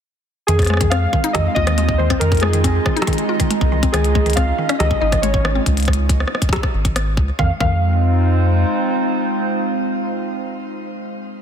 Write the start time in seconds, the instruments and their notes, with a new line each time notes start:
0.47 analog synth bass F2, synth arpeggio sound D#3, ambient pad G#3, synth keys G#4, closed hi-hat
0.59 kick, cross-stick, closed hi-hat
0.62 cross-stick, closed hi-hat
0.65 ambient pad C4, cross-stick, closed hi-hat
0.67 synth arpeggio sound G#3, cross-stick, closed hi-hat
0.74 cross-stick
0.77 synth arpeggio sound D#3, kick, cross-stick, closed hi-hat
0.90 synth arpeggio sound C4, ambient pad D#4 F4, synth keys F5, cross-stick, closed hi-hat
1.13 synth arpeggio sound D#3, kick
1.24 synth arpeggio sound D#4, closed hi-hat
1.29 ambient pad D#5
1.33 analog synth bass F2, synth arpeggio sound D#3, synth keys D#5, kick, cross-stick, closed hi-hat
1.48 synth keys F5
1.55 analog synth bass D#2, synth arpeggio sound F4, synth keys D#5, kick
1.67 synth arpeggio sound D#3, cross-stick, closed hi-hat
1.78 synth arpeggio sound G#3, closed hi-hat
1.89 kick
1.98 synth arpeggio sound D#3, synth keys C5
2.10 synth arpeggio sound C4, kick, cross-stick, closed hi-hat
2.20 analog synth bass F2, synth arpeggio sound D#3, synth keys A#4, closed hi-hat
2.32 kick, closed hi-hat
2.35 closed hi-hat
2.37 closed hi-hat
2.40 synth arpeggio sound G#3, synth keys G#4, cross-stick, closed hi-hat
2.53 synth arpeggio sound D#3, closed hi-hat
2.64 synth arpeggio sound C4, kick, closed hi-hat
2.86 synth arpeggio sound D#3, kick, cross-stick
2.96 synth arpeggio sound D#4, closed hi-hat
3.02 cross-stick, closed hi-hat
3.07 synth arpeggio sound D#3, kick, closed hi-hat
3.13 closed hi-hat
3.18 closed hi-hat
3.29 synth arpeggio sound F4
3.40 synth arpeggio sound D#3, kick, closed hi-hat
3.50 synth arpeggio sound G#3, closed hi-hat
3.61 analog synth bass C2, kick
3.72 synth arpeggio sound D#3
3.83 synth arpeggio sound C4, kick, closed hi-hat
3.92 analog synth bass C#2, synth arpeggio sound D#3, synth keys G#4, cross-stick, closed hi-hat
4.04 closed hi-hat
4.15 synth arpeggio sound G#3, ambient pad C#4, kick
4.26 synth arpeggio sound D#3, closed hi-hat
4.30 closed hi-hat
4.33 synth arpeggio sound C4, synth keys F5, kick, cross-stick, closed hi-hat
4.37 closed hi-hat
4.58 synth arpeggio sound D#3
4.69 synth arpeggio sound C#4, cross-stick, closed hi-hat
4.79 analog synth bass C#2, synth arpeggio sound D#3, synth keys D#5, cross-stick, closed hi-hat
4.91 kick
5.00 analog synth bass G#1, synth arpeggio sound D#4, synth keys D#5
5.12 synth arpeggio sound D#3, kick, cross-stick, closed hi-hat
5.22 synth arpeggio sound G#3, synth keys C#5, closed hi-hat
5.34 kick
5.45 synth arpeggio sound D#3, cross-stick
5.55 synth arpeggio sound C4
5.66 analog synth bass C#2, kick, closed hi-hat
5.77 closed hi-hat
5.80 closed hi-hat
5.83 closed hi-hat
5.85 kick, cross-stick, closed hi-hat
5.93 closed hi-hat
6.09 kick, closed hi-hat
6.20 cross-stick
6.28 cross-stick
6.35 cross-stick
6.42 kick, closed hi-hat
6.49 kick, cross-stick, closed hi-hat
6.56 kick
6.63 kick, cross-stick
6.74 analog synth bass G#1
6.85 kick, closed hi-hat
6.96 cross-stick, closed hi-hat
7.17 analog synth bass C#2, kick
7.39 analog synth bass F2, synth arpeggio sound D#3, ambient pad G#3, synth keys F5, kick
7.46 ambient pad C4
7.52 ambient pad D#4
7.58 analog synth bass F2, synth arpeggio sound D#3, ambient pad F4, synth keys F5, kick
7.65 ambient pad C5